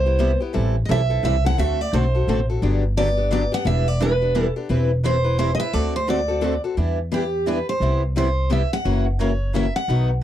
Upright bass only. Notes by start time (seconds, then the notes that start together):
Already playing: C2
0.55 A1
0.89 B1
1.23 C2
1.58 D2
1.93 B1
2.27 A1
2.62 G1
3.65 E1
4.70 E1
5.74 D2
6.77 E2
7.80 C2
8.85 F#1
9.88 B1